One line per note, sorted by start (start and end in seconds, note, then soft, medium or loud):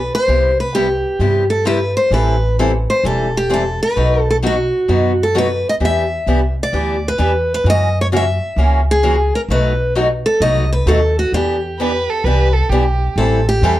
0.00 0.14 B4 medium
0.15 0.60 C5 medium
0.28 1.02 C2 medium
0.28 0.50 C3 medium
0.28 0.51 G3 medium
0.28 0.51 B3 medium
0.28 0.51 E4 medium
0.28 0.51 G4 medium
0.60 0.76 B4 medium
0.75 0.86 C3 medium
0.75 0.86 G3 medium
0.75 0.87 B3 medium
0.75 0.87 E4 medium
0.75 1.47 G4 medium
0.75 0.87 G4 medium
1.19 1.94 G2 medium
1.19 1.42 C3 medium
1.19 1.43 G3 medium
1.19 1.43 B3 medium
1.19 1.43 E4 medium
1.19 1.43 G4 medium
1.50 1.66 A4 medium
1.65 1.78 C3 medium
1.65 1.78 G3 medium
1.65 1.78 B3 medium
1.65 1.78 E4 medium
1.65 1.78 G4 medium
1.65 1.95 B4 medium
1.97 2.12 C5 medium
2.11 2.85 A1 medium
2.11 2.34 E3 medium
2.11 2.35 G3 medium
2.11 2.35 C4 medium
2.11 2.35 E4 medium
2.11 2.35 A4 medium
2.11 2.56 B4 medium
2.59 2.71 E3 medium
2.59 2.71 G3 medium
2.59 2.71 C4 medium
2.59 2.71 E4 medium
2.59 2.71 A4 medium
2.90 3.06 C5 medium
3.04 3.78 E1 medium
3.04 3.27 E3 medium
3.04 3.27 G3 medium
3.04 3.27 C4 medium
3.04 3.27 E4 medium
3.04 3.27 A4 medium
3.04 3.36 A4 medium
3.37 3.52 G4 medium
3.50 3.62 E3 medium
3.50 3.62 G3 medium
3.50 3.62 C4 medium
3.50 3.62 E4 medium
3.50 3.63 A4 medium
3.54 3.82 A4 medium
3.83 4.29 B4 medium
3.96 4.70 B1 medium
3.96 4.19 B2 medium
3.96 4.19 F#3 medium
3.96 4.19 B3 medium
3.96 4.19 D#4 medium
3.96 4.19 F#4 medium
4.30 4.35 A4 medium
4.43 4.55 B2 medium
4.43 4.54 F#3 medium
4.43 4.55 B3 medium
4.43 4.55 D#4 medium
4.43 4.55 F#4 medium
4.43 5.23 F#4 medium
4.88 5.62 F#2 medium
4.88 5.11 B2 medium
4.88 5.11 F#3 medium
4.88 5.11 B3 medium
4.88 5.11 D#4 medium
4.88 5.11 F#4 medium
5.23 5.36 A4 medium
5.35 5.47 B2 medium
5.35 5.46 F#3 medium
5.35 5.47 B3 medium
5.35 5.47 D#4 medium
5.35 5.47 F#4 medium
5.35 5.67 B4 medium
5.69 5.74 D#5 medium
5.80 6.17 E2 medium
5.80 6.03 E3 medium
5.80 6.03 B3 soft
5.80 6.03 D4 medium
5.80 6.03 G4 medium
5.85 6.55 E5 medium
6.26 6.66 C2 medium
6.26 6.39 E3 medium
6.26 6.39 B3 medium
6.26 6.39 D4 medium
6.26 6.39 G4 medium
6.63 7.07 D5 medium
6.73 7.12 D2 medium
6.73 6.95 E3 medium
6.73 6.95 B3 medium
6.73 6.95 D4 medium
6.73 6.95 G4 medium
7.08 7.53 B4 medium
7.18 7.58 E2 medium
7.18 7.30 E3 medium
7.18 7.30 B3 medium
7.18 7.31 D4 medium
7.18 7.31 G4 medium
7.54 7.67 B4 medium
7.64 8.38 F#2 medium
7.64 7.87 C#3 medium
7.64 7.88 E3 medium
7.64 7.88 A#3 medium
7.64 7.88 C#4 medium
7.64 7.88 F#4 medium
7.70 7.98 D#5 medium
8.01 8.06 C#5 medium
8.12 8.23 C#3 medium
8.12 8.23 E3 medium
8.12 8.24 A#3 medium
8.12 8.24 C#4 medium
8.12 8.24 F#4 medium
8.17 8.86 E5 medium
8.56 9.30 C#2 medium
8.56 8.79 C#3 medium
8.56 8.80 E3 medium
8.56 8.80 A#3 medium
8.56 8.80 C#4 medium
8.56 8.80 F#4 medium
8.91 9.35 G#4 medium
9.03 9.15 C#3 medium
9.03 9.15 E3 medium
9.03 9.15 A#3 medium
9.03 9.15 C#4 medium
9.03 9.15 F#4 medium
9.35 9.40 A#4 medium
9.49 10.22 B1 medium
9.49 9.72 B2 medium
9.49 9.72 F#3 medium
9.49 9.72 A3 medium
9.49 9.72 D#4 medium
9.49 9.72 F#4 medium
9.49 9.93 B4 medium
9.95 10.07 B2 medium
9.95 10.07 F#3 medium
9.95 10.07 A3 medium
9.95 10.07 D#4 medium
9.95 10.07 F#4 medium
10.26 10.42 A4 medium
10.40 10.80 C2 medium
10.40 10.63 B2 medium
10.40 10.64 F#3 medium
10.40 10.64 A3 medium
10.40 10.64 D#4 medium
10.40 10.64 F#4 medium
10.40 10.72 D#5 medium
10.73 10.87 B4 medium
10.86 11.26 D#2 medium
10.86 10.99 B2 medium
10.86 10.99 F#3 medium
10.86 10.99 A3 medium
10.86 10.99 D#4 medium
10.86 10.99 F#4 medium
10.86 11.16 A4 medium
11.19 11.33 F#4 medium
11.32 12.06 E2 medium
11.32 11.55 E3 medium
11.32 11.56 B3 medium
11.32 11.56 D4 medium
11.32 12.67 G4 medium
11.32 11.56 G4 medium
11.79 11.91 E3 medium
11.79 11.91 B3 medium
11.79 11.91 D4 medium
11.79 11.92 G4 medium
11.79 12.11 B4 medium
12.09 12.26 A4 medium
12.24 12.63 C2 medium
12.24 12.47 E3 medium
12.24 12.48 B3 medium
12.24 12.48 D4 medium
12.24 12.48 G4 medium
12.24 12.54 B4 medium
12.53 12.71 A4 medium
12.69 13.09 B1 medium
12.69 12.83 E3 medium
12.69 12.83 B3 medium
12.69 12.83 D4 medium
12.69 13.16 G4 medium
12.69 12.83 G4 medium
13.16 13.61 A1 medium
13.16 13.39 E3 medium
13.16 13.39 G3 medium
13.16 13.40 C4 medium
13.16 13.39 E4 medium
13.16 13.46 A4 medium
13.16 13.40 A4 medium
13.49 13.80 G4 medium
13.62 13.80 E2 medium
13.62 13.75 E3 medium
13.62 13.75 G3 medium
13.62 13.75 C4 medium
13.62 13.75 E4 medium
13.62 13.75 A4 medium